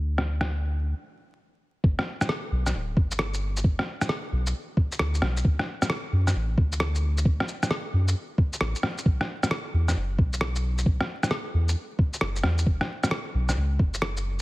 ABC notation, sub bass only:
X:1
M:4/4
L:1/16
Q:"Swing 16ths" 1/4=133
K:Glyd
V:1 name="Sub bass" clef=bass
D,,8 z8 | G,,, z4 z B,,,2 D,,,2 G,,,6 | G,,, z4 z B,,,2 z4 D,,2 B,,,2 | D,, z4 z F,,2 A,,,2 D,,6 |
D,, z4 z F,,2 z4 A,,, z3 | B,,, z4 z E,,2 F,,,2 B,,,6 | B,,, z4 z E,,2 z4 F,,,2 E,,2 | F,,, z4 z B,,,2 C,,2 F,,,6 |]